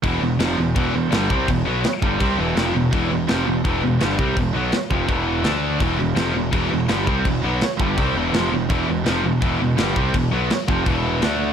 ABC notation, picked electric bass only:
X:1
M:4/4
L:1/8
Q:1/4=166
K:Ephr
V:1 name="Picked electric bass" clef=bass
E,,, E,,, F,,, E,,, E,,, E,,, G,,, C,, | E,,, B,,, z G,,, C,, E,,, F,,, E,,, | E,,, E,,, F,,, E,,, E,,, E,,, G,,, C,, | E,,, B,,, z F,,, E,,,2 D,,2 |
E,,, E,,, F,,, E,,, E,,, E,,, G,,, C,, | E,,, B,,, z G,,, C,, E,,, F,,, E,,, | E,,, E,,, F,,, E,,, E,,, E,,, G,,, C,, | E,,, B,,, z F,,, E,,,2 D,,2 |]